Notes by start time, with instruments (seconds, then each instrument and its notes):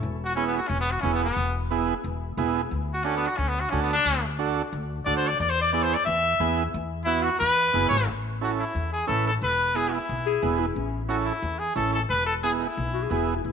0.03 upright bass E1
0.25 trumpet F#4
0.35 transistor combo organ B3 E4 G#4, trumpet C#4
0.47 trumpet B3
0.58 trumpet F#4
0.68 upright bass E1, trumpet C#4
0.80 trumpet B3
0.91 trumpet F#4
1.01 upright bass E1, transistor combo organ B3 E4 G#4, trumpet C#4
1.14 trumpet B3
1.24 trumpet B3
1.36 upright bass E1
1.71 transistor combo organ B3 E4 G#4
2.04 upright bass E1
2.37 upright bass E1, transistor combo organ B3 E4 G#4
2.71 upright bass D2
2.94 trumpet F#4
3.05 trumpet C#4, transistor combo organ D4 F#4 A4
3.16 trumpet B3
3.27 trumpet F#4
3.37 upright bass D2, trumpet C#4
3.48 trumpet B3
3.60 trumpet F#4
3.70 upright bass D2, trumpet C#4, transistor combo organ D4 F#4 A4
3.82 trumpet B3
3.93 trumpet D4
4.05 upright bass D2
4.39 transistor combo organ D4 F#4 A4
4.73 upright bass D2
5.05 upright bass D2, transistor combo organ D4 F#4 A4, trumpet D5
5.17 trumpet C5
5.28 trumpet D5
5.40 upright bass E2, trumpet D5
5.50 trumpet C5
5.61 trumpet D5
5.73 transistor combo organ B3 E4 G#4, trumpet D5
5.83 trumpet C5
5.94 trumpet D5
6.05 upright bass E2, trumpet E5
6.40 upright bass E2, transistor combo organ B3 E4 G#4
6.74 upright bass E2
7.04 transistor combo organ B3 E4 F#4, trumpet E4
7.23 trumpet F#4
7.39 upright bass E2, trumpet B4
7.73 upright bass F#1, transistor combo organ B3 E4 G#4
7.89 upright bass G#1, trumpet C#5
8.08 upright bass A1
8.41 transistor combo organ C#4 E4 A4, trumpet F#4
8.59 trumpet E4
8.75 upright bass E2
8.93 trumpet G#4
9.07 upright bass A1, transistor combo organ C#4 E4 B4, trumpet A4
9.27 trumpet A4
9.41 upright bass E1, trumpet B4
9.75 transistor combo organ B3 E4 G#4, trumpet G#4
9.93 trumpet E4
10.09 upright bass B1
10.26 clarinet G#4
10.42 upright bass E1, transistor combo organ B3 E4 G#4
10.59 clarinet E4
10.76 upright bass A1, clarinet C#4
11.08 transistor combo organ C#4 E4 A4, trumpet F#4
11.26 trumpet E4
11.42 upright bass E2
11.59 trumpet G#4
11.76 upright bass A1, transistor combo organ C#4 E4 A4, trumpet A4
11.94 trumpet A4
12.10 upright bass E1, trumpet B4
12.26 trumpet A4
12.43 transistor combo organ B3 E4 G#4, trumpet G#4
12.59 trumpet E4
12.77 upright bass B1
12.94 clarinet F#4
13.03 clarinet G#4
13.10 upright bass E1, transistor combo organ B3 E4 G#4, clarinet G#4
13.36 clarinet E4
13.44 upright bass A1, clarinet E4